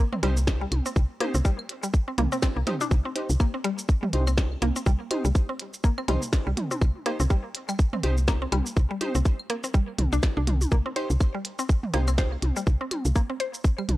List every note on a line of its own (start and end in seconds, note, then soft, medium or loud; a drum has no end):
0.13 0.15 C4 medium
0.13 mid tom medium
0.23 0.66 C2 medium
0.23 0.28 G3 loud
0.23 0.35 D#4 loud
0.23 0.35 G4 medium
0.23 0.35 C5 loud
0.23 closed hi-hat medium
0.23 high tom medium
0.37 shaker medium
0.47 kick loud
0.47 snare loud
0.47 shaker soft
0.61 0.65 G3 medium
0.72 0.81 C2 medium
0.72 closed hi-hat medium
0.72 high tom medium
0.72 claves medium
0.86 0.90 C4 medium
0.86 shaker medium
0.96 1.05 C2 loud
0.96 kick loud
0.96 shaker soft
1.20 1.26 A#3 loud
1.20 1.33 D#4 medium
1.20 1.33 G4 medium
1.20 1.33 C5 medium
1.20 closed hi-hat medium
1.20 high tom medium
1.34 1.41 C2 loud
1.34 1.37 C4 medium
1.34 shaker medium
1.45 1.50 G3 loud
1.45 kick loud
1.45 shaker soft
1.59 claves medium
1.69 closed hi-hat medium
1.83 1.87 G3 medium
1.83 shaker medium
1.94 kick loud
1.94 shaker soft
2.08 2.12 C4 medium
2.18 2.27 C2 medium
2.18 2.21 A#3 loud
2.18 closed hi-hat loud
2.18 mid tom medium
2.18 high tom medium
2.32 2.36 C4 loud
2.32 shaker medium
2.42 2.48 C4 loud
2.42 kick loud
2.42 snare loud
2.42 claves medium
2.42 shaker soft
2.56 2.63 C2 medium
2.56 2.60 A#3 medium
2.67 2.75 D#4 medium
2.67 2.70 D#4 medium
2.67 2.75 G4 medium
2.67 2.75 C5 medium
2.67 closed hi-hat medium
2.67 mid tom medium
2.67 high tom medium
2.81 2.87 D4 loud
2.81 high tom medium
2.81 shaker medium
2.91 3.00 C2 loud
2.91 kick loud
2.91 shaker soft
3.05 3.09 C4 medium
3.16 3.28 D#4 medium
3.16 3.28 G4 medium
3.16 3.28 C5 medium
3.16 closed hi-hat loud
3.30 3.36 C2 loud
3.30 shaker medium
3.40 3.45 A#3 loud
3.40 kick loud
3.40 claves medium
3.40 shaker soft
3.54 3.56 C4 medium
3.64 3.70 G3 loud
3.64 closed hi-hat medium
3.78 shaker medium
3.89 kick loud
3.89 shaker soft
4.03 4.07 G3 medium
4.03 mid tom loud
4.13 4.56 C2 medium
4.13 4.26 D#4 medium
4.13 4.26 G4 medium
4.13 4.26 C5 loud
4.13 closed hi-hat loud
4.13 high tom medium
4.27 4.31 C4 medium
4.27 claves medium
4.27 shaker medium
4.38 kick loud
4.38 snare loud
4.38 shaker soft
4.62 4.71 C2 medium
4.62 4.67 A#3 loud
4.62 closed hi-hat medium
4.62 high tom medium
4.76 4.78 C4 medium
4.76 shaker medium
4.86 4.95 C2 loud
4.86 4.92 G3 loud
4.86 kick loud
4.86 shaker soft
5.11 5.23 D#4 medium
5.11 5.23 G4 medium
5.11 5.23 C5 medium
5.11 closed hi-hat loud
5.11 high tom medium
5.11 claves medium
5.25 5.31 C2 loud
5.25 5.29 G3 medium
5.25 shaker medium
5.35 kick loud
5.35 shaker soft
5.49 5.53 C4 medium
5.59 closed hi-hat loud
5.74 shaker medium
5.84 5.89 A#3 loud
5.84 kick loud
5.84 shaker soft
5.98 6.00 C4 medium
5.98 claves medium
6.08 6.17 C2 medium
6.08 6.13 G3 loud
6.08 6.21 D#4 loud
6.08 6.21 G4 medium
6.08 6.21 C5 loud
6.08 closed hi-hat loud
6.08 mid tom medium
6.08 high tom medium
6.22 shaker medium
6.33 kick loud
6.33 snare loud
6.33 shaker soft
6.47 6.53 C2 medium
6.47 6.51 G3 medium
6.57 closed hi-hat medium
6.57 mid tom medium
6.57 high tom medium
6.71 6.75 C4 medium
6.71 high tom medium
6.71 shaker medium
6.81 6.90 C2 loud
6.81 kick loud
6.81 claves medium
6.81 shaker soft
7.06 7.11 A#3 loud
7.06 7.18 D#4 medium
7.06 7.18 G4 medium
7.06 7.18 C5 medium
7.06 closed hi-hat loud
7.20 7.26 C2 loud
7.20 7.22 C4 medium
7.20 shaker medium
7.30 7.35 G3 loud
7.30 kick loud
7.30 shaker soft
7.55 closed hi-hat loud
7.69 7.73 G3 medium
7.69 claves medium
7.69 shaker soft
7.79 kick loud
7.79 shaker soft
7.93 7.97 C4 medium
7.93 mid tom loud
8.03 8.46 C2 medium
8.03 8.16 D#4 medium
8.03 8.16 G4 medium
8.03 8.16 C5 loud
8.03 closed hi-hat loud
8.03 high tom medium
8.17 shaker medium
8.28 8.33 A#3 loud
8.28 kick loud
8.28 snare loud
8.28 shaker soft
8.42 8.44 C4 medium
8.52 8.61 C2 medium
8.52 8.57 G3 loud
8.52 closed hi-hat loud
8.52 high tom medium
8.52 claves medium
8.66 shaker medium
8.77 8.86 C2 loud
8.77 kick loud
8.77 shaker soft
8.91 8.94 G3 medium
9.01 9.14 D#4 medium
9.01 9.14 G4 medium
9.01 9.14 C5 medium
9.01 closed hi-hat loud
9.01 high tom medium
9.15 9.22 C2 loud
9.15 9.19 C4 medium
9.15 shaker medium
9.25 kick loud
9.25 shaker soft
9.39 claves medium
9.50 9.55 A#3 loud
9.50 closed hi-hat loud
9.64 9.66 C4 medium
9.64 shaker medium
9.74 9.79 G3 loud
9.74 kick loud
9.74 shaker soft
9.98 10.07 C2 medium
9.98 closed hi-hat loud
9.98 mid tom medium
9.98 high tom medium
10.13 10.19 C2 medium
10.13 10.16 D4 loud
10.13 shaker medium
10.23 kick loud
10.23 snare loud
10.23 claves medium
10.23 shaker soft
10.37 10.66 C2 loud
10.37 10.41 D4 medium
10.47 closed hi-hat medium
10.47 mid tom medium
10.47 high tom medium
10.61 high tom medium
10.61 shaker medium
10.72 10.81 C2 loud
10.72 10.77 A#3 loud
10.72 kick loud
10.72 shaker soft
10.86 10.88 C4 medium
10.96 11.09 D#4 medium
10.96 11.09 G4 medium
10.96 11.09 C5 medium
10.96 11.01 C5 medium
10.96 closed hi-hat loud
11.10 11.17 C2 loud
11.10 shaker medium
11.20 kick loud
11.20 claves medium
11.20 shaker soft
11.34 11.38 G3 medium
11.45 closed hi-hat medium
11.59 11.63 C4 medium
11.59 shaker medium
11.69 kick loud
11.69 shaker soft
11.83 mid tom medium
11.94 12.36 C2 medium
11.94 11.99 A#3 loud
11.94 12.06 D#4 medium
11.94 12.06 G4 medium
11.94 12.06 C5 loud
11.94 closed hi-hat medium
11.94 high tom medium
12.08 12.10 C4 medium
12.08 claves medium
12.08 shaker medium
12.18 12.23 C5 medium
12.18 kick loud
12.18 snare loud
12.18 shaker soft
12.42 12.51 C2 medium
12.42 closed hi-hat medium
12.42 high tom medium
12.56 12.60 G3 medium
12.56 shaker medium
12.67 12.76 C2 loud
12.67 kick loud
12.67 shaker soft
12.81 12.85 C4 medium
12.91 closed hi-hat medium
12.91 high tom medium
12.91 claves medium
13.05 13.12 C2 loud
13.05 shaker medium
13.16 13.21 A#3 loud
13.16 kick loud
13.16 shaker soft
13.30 13.32 C4 medium
13.40 13.45 C5 medium
13.40 closed hi-hat medium
13.54 shaker medium
13.64 kick loud
13.64 shaker soft
13.78 13.82 G3 medium
13.78 claves medium
13.89 13.97 C2 medium
13.89 closed hi-hat medium
13.89 mid tom medium
13.89 high tom medium